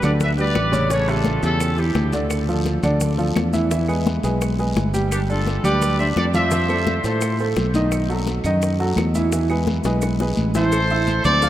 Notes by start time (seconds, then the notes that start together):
0.03 D2 D3 D4 B4 D5, high bongo, low conga, short guiro, claves, maracas
0.20 B4 E5, high bongo, high conga, low conga, long guiro, maracas
0.38 G3 G4 B4 D5, high bongo, maracas
0.55 A1, high bongo, low bongo, high conga, short guiro, claves, maracas
0.72 C#3 C#4 C#5, high bongo, high conga, short guiro, maracas
0.90 C#3 C#4 A4 C#5, high bongo, high conga, long guiro, maracas
1.08 C#3 F4 G4 A4 E5, high bongo, high conga, claves, maracas
1.24 high bongo, high conga, short guiro, maracas
1.42 E2 C#3 F4 G4 A4 E5, high bongo, high conga, short guiro, maracas
1.60 high bongo, high conga, long guiro, claves, maracas
1.77 E3 E4 G4, high bongo, high conga, maracas
1.95 D2, high bongo, low bongo, high conga, short guiro, maracas
2.13 D3 D4 D5, high conga, short guiro, maracas
2.30 high bongo, high conga, long guiro, claves, maracas
2.48 F3 F4 A4, high conga, maracas
2.65 high bongo, high conga, short guiro, maracas
2.83 D2 D3 D4 D5, high bongo, low conga, short guiro, claves, maracas
3.00 high bongo, high conga, low conga, long guiro, maracas
3.18 F3 F4 A4, high bongo, high conga, maracas
3.35 E2, high bongo, low bongo, high conga, short guiro, claves, maracas
3.53 E3 E4 E5, high bongo, high conga, short guiro, maracas
3.71 E3 E4 E5, high bongo, high conga, long guiro, maracas
3.88 G#3 G#4 B4, high bongo, high conga, claves, maracas
4.06 high bongo, high conga, short guiro, maracas
4.23 B1 G#3 G#4 B4, high bongo, high conga, short guiro, maracas
4.41 high bongo, high conga, long guiro, claves, maracas
4.59 G#3 G#4 B4, high bongo, high conga, maracas
4.76 G1, high bongo, low bongo, high conga, short guiro, maracas
4.94 G3 G4 G5, high conga, short guiro, maracas
5.11 D4 G4, high bongo, high conga, long guiro, claves, maracas
5.29 D4 F4 A4 D5, high conga, maracas
5.46 high bongo, high conga, short guiro, maracas
5.64 D2 G3 G4 B4 D5 G5, high bongo, low conga, short guiro, claves, maracas
5.81 high bongo, high conga, low conga, long guiro, maracas
5.99 D4 C5 D5 E5, high bongo, high conga, maracas
6.16 F2 A4 D5, high bongo, low bongo, high conga, short guiro, claves, maracas
6.34 F3 F4 C5 E5 F5, high bongo, high conga, short guiro, maracas
6.51 F3 F4 F5, high bongo, high conga, long guiro, maracas
6.69 A3 A4 C5, high bongo, high conga, claves, maracas
6.87 high bongo, high conga, short guiro, maracas
7.04 A2 A3 A4 C5, high bongo, high conga, short guiro, maracas
7.21 high bongo, high conga, long guiro, claves, maracas
7.39 A3 A4 C5, high bongo, high conga, maracas
7.56 B1, high bongo, low bongo, high conga, short guiro, maracas
7.74 D#3 D#4 D#5, high conga, short guiro, maracas
7.92 high bongo, long guiro, claves, maracas
8.09 F#3 F#4 A4, high conga, maracas
8.27 high bongo, high conga, short guiro, maracas
8.44 F#2 D#3 D#4 D#5, high bongo, low conga, short guiro, claves, maracas
8.62 high bongo, high conga, long guiro, maracas
8.79 F#3 F#4 A4, high bongo, high conga, maracas
8.96 E2, high bongo, low bongo, high conga, short guiro, claves, maracas
9.14 E3 E4 E5, high bongo, high conga, short guiro, maracas
9.32 E3 E4 E5, high bongo, high conga, long guiro, maracas
9.49 G#3 G#4 B4, high bongo, high conga, claves, maracas
9.67 high bongo, high conga, short guiro, maracas
9.84 B1 G#3 G#4 B4, high bongo, high conga, short guiro, maracas
10.01 high bongo, high conga, long guiro, claves, maracas
10.19 G#3 G#4 B4, low bongo, high conga, maracas
10.37 A1, high conga, short guiro, maracas
10.54 E3 E4 A4 C5 E5, low bongo, high conga, short guiro, maracas
10.72 cowbell, high conga, long guiro, claves, maracas
10.90 E4 E5 E6, high conga, maracas
11.07 cowbell, high conga, short guiro, maracas
11.24 D2 C4 A4 C5 D5 C6, low conga, short guiro, claves, maracas
11.42 F4 F5 F6, cowbell, high conga, low conga, long guiro, maracas